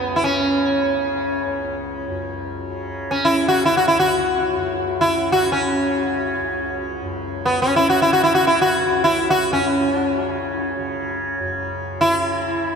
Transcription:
0, 0, Header, 1, 3, 480
1, 0, Start_track
1, 0, Tempo, 500000
1, 12244, End_track
2, 0, Start_track
2, 0, Title_t, "Sitar"
2, 0, Program_c, 0, 104
2, 0, Note_on_c, 0, 59, 76
2, 155, Note_on_c, 0, 64, 50
2, 181, Note_off_c, 0, 59, 0
2, 219, Note_off_c, 0, 64, 0
2, 229, Note_on_c, 0, 61, 74
2, 1715, Note_off_c, 0, 61, 0
2, 2985, Note_on_c, 0, 61, 66
2, 3118, Note_on_c, 0, 64, 70
2, 3123, Note_off_c, 0, 61, 0
2, 3341, Note_off_c, 0, 64, 0
2, 3344, Note_on_c, 0, 66, 78
2, 3505, Note_off_c, 0, 66, 0
2, 3509, Note_on_c, 0, 64, 66
2, 3618, Note_off_c, 0, 64, 0
2, 3622, Note_on_c, 0, 66, 77
2, 3719, Note_off_c, 0, 66, 0
2, 3723, Note_on_c, 0, 64, 75
2, 3832, Note_off_c, 0, 64, 0
2, 3836, Note_on_c, 0, 66, 79
2, 4805, Note_off_c, 0, 66, 0
2, 4809, Note_on_c, 0, 64, 71
2, 5100, Note_off_c, 0, 64, 0
2, 5111, Note_on_c, 0, 66, 79
2, 5296, Note_off_c, 0, 66, 0
2, 5300, Note_on_c, 0, 61, 57
2, 6501, Note_off_c, 0, 61, 0
2, 7157, Note_on_c, 0, 59, 71
2, 7312, Note_off_c, 0, 59, 0
2, 7316, Note_on_c, 0, 61, 76
2, 7448, Note_off_c, 0, 61, 0
2, 7452, Note_on_c, 0, 64, 83
2, 7576, Note_off_c, 0, 64, 0
2, 7580, Note_on_c, 0, 66, 78
2, 7696, Note_off_c, 0, 66, 0
2, 7700, Note_on_c, 0, 64, 75
2, 7800, Note_off_c, 0, 64, 0
2, 7804, Note_on_c, 0, 66, 77
2, 7903, Note_off_c, 0, 66, 0
2, 7907, Note_on_c, 0, 64, 78
2, 8010, Note_off_c, 0, 64, 0
2, 8014, Note_on_c, 0, 66, 76
2, 8130, Note_off_c, 0, 66, 0
2, 8134, Note_on_c, 0, 64, 74
2, 8267, Note_off_c, 0, 64, 0
2, 8271, Note_on_c, 0, 66, 82
2, 8675, Note_off_c, 0, 66, 0
2, 8679, Note_on_c, 0, 64, 82
2, 8928, Note_off_c, 0, 64, 0
2, 8932, Note_on_c, 0, 66, 82
2, 9143, Note_off_c, 0, 66, 0
2, 9147, Note_on_c, 0, 61, 62
2, 9550, Note_off_c, 0, 61, 0
2, 9550, Note_on_c, 0, 62, 62
2, 9656, Note_off_c, 0, 62, 0
2, 9656, Note_on_c, 0, 61, 62
2, 10269, Note_off_c, 0, 61, 0
2, 11529, Note_on_c, 0, 64, 72
2, 12244, Note_off_c, 0, 64, 0
2, 12244, End_track
3, 0, Start_track
3, 0, Title_t, "Tanpura"
3, 0, Program_c, 1, 104
3, 0, Note_on_c, 1, 37, 51
3, 0, Note_on_c, 1, 42, 53
3, 0, Note_on_c, 1, 49, 50
3, 201, Note_off_c, 1, 49, 0
3, 201, Note_on_c, 1, 49, 52
3, 800, Note_off_c, 1, 49, 0
3, 800, Note_on_c, 1, 49, 53
3, 1395, Note_off_c, 1, 37, 0
3, 1399, Note_on_c, 1, 37, 56
3, 1990, Note_off_c, 1, 42, 0
3, 1994, Note_on_c, 1, 42, 52
3, 2589, Note_off_c, 1, 49, 0
3, 2589, Note_on_c, 1, 49, 50
3, 3172, Note_off_c, 1, 49, 0
3, 3172, Note_on_c, 1, 49, 51
3, 3773, Note_off_c, 1, 37, 0
3, 3777, Note_on_c, 1, 37, 55
3, 4364, Note_off_c, 1, 42, 0
3, 4367, Note_on_c, 1, 42, 54
3, 4957, Note_off_c, 1, 49, 0
3, 4957, Note_on_c, 1, 49, 52
3, 5555, Note_off_c, 1, 49, 0
3, 5555, Note_on_c, 1, 49, 52
3, 6139, Note_off_c, 1, 37, 0
3, 6142, Note_on_c, 1, 37, 53
3, 6734, Note_off_c, 1, 42, 0
3, 6738, Note_on_c, 1, 42, 53
3, 7338, Note_off_c, 1, 49, 0
3, 7338, Note_on_c, 1, 49, 50
3, 7934, Note_off_c, 1, 49, 0
3, 7934, Note_on_c, 1, 49, 55
3, 8526, Note_off_c, 1, 37, 0
3, 8529, Note_on_c, 1, 37, 59
3, 9122, Note_off_c, 1, 42, 0
3, 9126, Note_on_c, 1, 42, 51
3, 9713, Note_off_c, 1, 49, 0
3, 9713, Note_on_c, 1, 49, 56
3, 10318, Note_off_c, 1, 49, 0
3, 10318, Note_on_c, 1, 49, 57
3, 10942, Note_off_c, 1, 42, 0
3, 10946, Note_on_c, 1, 42, 51
3, 11541, Note_off_c, 1, 49, 0
3, 11541, Note_on_c, 1, 49, 53
3, 12136, Note_off_c, 1, 49, 0
3, 12136, Note_on_c, 1, 49, 50
3, 12244, Note_off_c, 1, 37, 0
3, 12244, Note_off_c, 1, 42, 0
3, 12244, Note_off_c, 1, 49, 0
3, 12244, End_track
0, 0, End_of_file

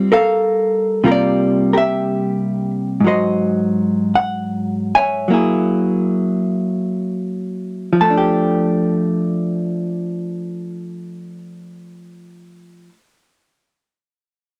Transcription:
0, 0, Header, 1, 2, 480
1, 0, Start_track
1, 0, Key_signature, -1, "major"
1, 0, Tempo, 960000
1, 1003, Tempo, 1025641
1, 1482, Time_signature, 4, 2, 24, 8
1, 1483, Tempo, 1086957
1, 1963, Tempo, 1167315
1, 2443, Tempo, 1273885
1, 2923, Tempo, 1411765
1, 3403, Tempo, 1496259
1, 5527, End_track
2, 0, Start_track
2, 0, Title_t, "Hollow-body jazz guitar"
2, 0, Program_c, 0, 26
2, 0, Note_on_c, 0, 55, 39
2, 0, Note_on_c, 0, 60, 38
2, 0, Note_on_c, 0, 65, 43
2, 56, Note_off_c, 0, 65, 0
2, 58, Note_on_c, 0, 70, 63
2, 61, Note_off_c, 0, 60, 0
2, 63, Note_on_c, 0, 69, 59
2, 67, Note_on_c, 0, 77, 81
2, 502, Note_off_c, 0, 70, 0
2, 504, Note_off_c, 0, 69, 0
2, 514, Note_off_c, 0, 55, 0
2, 518, Note_on_c, 0, 48, 43
2, 520, Note_on_c, 0, 55, 41
2, 525, Note_on_c, 0, 65, 45
2, 530, Note_on_c, 0, 58, 43
2, 536, Note_off_c, 0, 77, 0
2, 538, Note_on_c, 0, 70, 53
2, 556, Note_off_c, 0, 70, 0
2, 558, Note_on_c, 0, 74, 69
2, 865, Note_off_c, 0, 74, 0
2, 867, Note_on_c, 0, 70, 47
2, 869, Note_off_c, 0, 65, 0
2, 871, Note_on_c, 0, 67, 46
2, 886, Note_off_c, 0, 70, 0
2, 888, Note_on_c, 0, 76, 65
2, 1330, Note_off_c, 0, 76, 0
2, 1471, Note_on_c, 0, 44, 36
2, 1474, Note_off_c, 0, 67, 0
2, 1484, Note_off_c, 0, 48, 0
2, 1485, Note_off_c, 0, 55, 0
2, 1488, Note_on_c, 0, 54, 41
2, 1489, Note_off_c, 0, 58, 0
2, 1498, Note_on_c, 0, 66, 47
2, 1501, Note_on_c, 0, 72, 44
2, 1504, Note_on_c, 0, 75, 57
2, 1978, Note_on_c, 0, 78, 76
2, 1984, Note_off_c, 0, 75, 0
2, 2303, Note_off_c, 0, 78, 0
2, 2305, Note_on_c, 0, 80, 72
2, 2308, Note_on_c, 0, 76, 44
2, 2310, Note_on_c, 0, 73, 48
2, 2434, Note_off_c, 0, 66, 0
2, 2434, Note_off_c, 0, 72, 0
2, 2436, Note_off_c, 0, 54, 0
2, 2437, Note_off_c, 0, 44, 0
2, 2441, Note_on_c, 0, 54, 41
2, 2448, Note_off_c, 0, 73, 0
2, 2449, Note_on_c, 0, 58, 45
2, 2453, Note_off_c, 0, 76, 0
2, 2455, Note_on_c, 0, 64, 41
2, 2461, Note_off_c, 0, 80, 0
2, 2462, Note_on_c, 0, 68, 49
2, 3386, Note_off_c, 0, 54, 0
2, 3388, Note_on_c, 0, 53, 49
2, 3406, Note_off_c, 0, 58, 0
2, 3408, Note_off_c, 0, 64, 0
2, 3411, Note_off_c, 0, 68, 0
2, 3415, Note_on_c, 0, 81, 61
2, 3417, Note_on_c, 0, 57, 43
2, 3445, Note_on_c, 0, 62, 45
2, 3468, Note_on_c, 0, 67, 52
2, 4980, Note_off_c, 0, 53, 0
2, 4993, Note_off_c, 0, 81, 0
2, 5008, Note_off_c, 0, 57, 0
2, 5037, Note_off_c, 0, 62, 0
2, 5060, Note_off_c, 0, 67, 0
2, 5527, End_track
0, 0, End_of_file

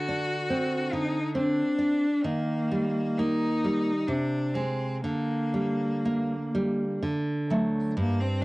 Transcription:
0, 0, Header, 1, 3, 480
1, 0, Start_track
1, 0, Tempo, 857143
1, 1250, Tempo, 923077
1, 1251, Time_signature, 3, 2, 24, 8
1, 2210, Tempo, 955414
1, 2690, Tempo, 995025
1, 3650, Tempo, 927357
1, 4386, End_track
2, 0, Start_track
2, 0, Title_t, "Cello"
2, 0, Program_c, 0, 42
2, 0, Note_on_c, 0, 66, 90
2, 519, Note_on_c, 0, 63, 85
2, 527, Note_off_c, 0, 66, 0
2, 755, Note_off_c, 0, 63, 0
2, 758, Note_on_c, 0, 62, 88
2, 1249, Note_on_c, 0, 58, 84
2, 1257, Note_off_c, 0, 62, 0
2, 1742, Note_on_c, 0, 63, 92
2, 1750, Note_off_c, 0, 58, 0
2, 2209, Note_on_c, 0, 62, 77
2, 2217, Note_off_c, 0, 63, 0
2, 2442, Note_on_c, 0, 60, 65
2, 2449, Note_off_c, 0, 62, 0
2, 2690, Note_off_c, 0, 60, 0
2, 2694, Note_on_c, 0, 58, 80
2, 3633, Note_off_c, 0, 58, 0
2, 4145, Note_on_c, 0, 58, 91
2, 4259, Note_on_c, 0, 60, 76
2, 4266, Note_off_c, 0, 58, 0
2, 4370, Note_on_c, 0, 62, 85
2, 4378, Note_off_c, 0, 60, 0
2, 4386, Note_off_c, 0, 62, 0
2, 4386, End_track
3, 0, Start_track
3, 0, Title_t, "Nylon-string guitar"
3, 0, Program_c, 1, 24
3, 0, Note_on_c, 1, 50, 67
3, 48, Note_on_c, 1, 62, 54
3, 281, Note_on_c, 1, 60, 55
3, 424, Note_off_c, 1, 62, 0
3, 515, Note_off_c, 1, 50, 0
3, 522, Note_on_c, 1, 50, 54
3, 661, Note_off_c, 1, 60, 0
3, 756, Note_on_c, 1, 60, 53
3, 907, Note_off_c, 1, 50, 0
3, 1000, Note_on_c, 1, 62, 60
3, 1150, Note_off_c, 1, 60, 0
3, 1250, Note_off_c, 1, 62, 0
3, 1256, Note_on_c, 1, 51, 63
3, 1501, Note_on_c, 1, 55, 52
3, 1748, Note_on_c, 1, 58, 50
3, 1889, Note_off_c, 1, 55, 0
3, 1984, Note_on_c, 1, 55, 47
3, 2119, Note_off_c, 1, 58, 0
3, 2193, Note_off_c, 1, 51, 0
3, 2211, Note_on_c, 1, 48, 63
3, 2214, Note_off_c, 1, 55, 0
3, 2447, Note_on_c, 1, 56, 53
3, 2673, Note_off_c, 1, 56, 0
3, 2677, Note_off_c, 1, 48, 0
3, 2692, Note_on_c, 1, 50, 57
3, 2933, Note_on_c, 1, 55, 47
3, 3182, Note_on_c, 1, 58, 50
3, 3322, Note_off_c, 1, 55, 0
3, 3420, Note_on_c, 1, 55, 46
3, 3560, Note_off_c, 1, 58, 0
3, 3633, Note_off_c, 1, 50, 0
3, 3651, Note_on_c, 1, 50, 60
3, 3652, Note_off_c, 1, 55, 0
3, 3898, Note_on_c, 1, 54, 45
3, 3902, Note_on_c, 1, 57, 49
3, 4121, Note_off_c, 1, 54, 0
3, 4123, Note_off_c, 1, 57, 0
3, 4128, Note_off_c, 1, 50, 0
3, 4138, Note_on_c, 1, 43, 72
3, 4386, Note_off_c, 1, 43, 0
3, 4386, End_track
0, 0, End_of_file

